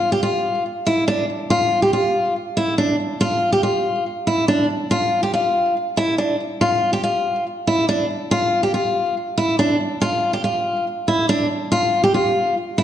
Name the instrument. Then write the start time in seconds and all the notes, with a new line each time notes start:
steel-string acoustic guitar
Already playing: F4
0.12 G4
0.23 F4
0.87 E4
1.08 D4
1.50 F4
1.82 G4
1.93 F4
2.57 E4
2.78 D4
3.21 F4
3.52 G4
3.63 F4
4.27 E4
4.48 D4
4.91 F4
5.23 G4
5.34 F4
5.97 E4
6.18 D4
6.61 F4
6.93 G4
7.04 F4
7.67 E4
7.89 D4
8.31 F4
8.63 G4
8.74 F4
9.38 E4
9.59 D4
10.01 F4
10.33 G4
10.44 F4
11.08 E4
11.29 D4
11.72 F4
12.04 G4
12.14 F4
12.78 E4